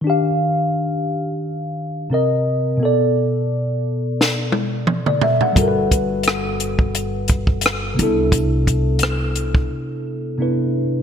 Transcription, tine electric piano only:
0.01 D#3 D4
0.07 G4 F5
2.10 C3 C4 A#4
2.14 D#5
2.77 B2 B3
2.83 A4 D5
5.08 D5
5.23 E5
5.42 F#5
5.53 G3 F#4
5.58 A4 A#4
5.68 B4
7.94 C3 B3
7.99 D4 E4 A4
10.38 C3 B3 D4 E4 B4

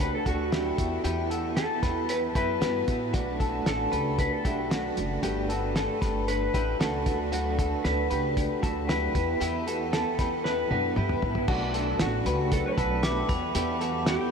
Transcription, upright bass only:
0.26 D2
0.79 E2
1.05 E2
1.83 E2
2.35 F#2
2.61 G2
2.88 A2
3.14 B1
3.67 A1
3.93 C#2
4.45 B1
4.98 F#1
5.23 G1
6.02 G1
6.54 A1
6.80 C#2
7.06 D2
7.85 D2
8.11 C#2
8.63 D2
9.15 E2
9.41 E2
10.19 E2
10.71 F#2
10.97 G2
11.23 A2
11.48 B1
12.00 A1
12.26 C#2
12.78 B1
13.29 E2
13.55 E2

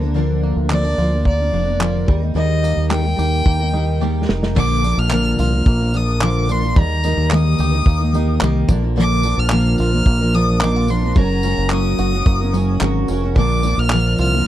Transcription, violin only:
0.71 D5
1.27 D5
2.37 D#5
2.91 G5
4.58 D6
4.99 F6
5.40 F6
5.97 D#6
6.23 D6
6.52 C6
6.79 A#5
7.34 D#6
9.00 D6
9.39 F6
9.80 F6
10.35 D#6
10.62 D6
10.90 C6
11.17 A#5
11.72 D#6
13.38 D6
13.79 F6
14.20 F6

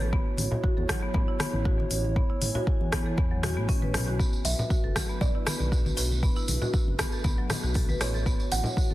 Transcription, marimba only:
0.01 A4
0.13 B3
0.64 F#4
0.77 A4
0.89 F#3
1.03 B3
1.14 B3
1.28 E4
1.40 B3
1.65 F#4
2.16 B3
2.30 E4
2.55 F#4
2.92 B3
3.06 A4
3.18 B3
3.31 F#3
3.43 F#4
3.57 B3
3.69 C#4
3.82 B4
3.94 B3
4.08 F#4
4.19 B3
4.70 F#4
4.84 A4
4.96 F#3
5.09 B3
5.35 E4
5.47 B3
5.72 F#4
6.23 B3
6.37 E4
6.62 F#4
6.99 B3
7.13 A4
7.24 B3
7.38 F#3
7.50 B3
7.63 F#4
7.75 A4
7.89 B4
8.01 B3
8.14 A4
8.26 B3
8.77 F#4
8.91 A4

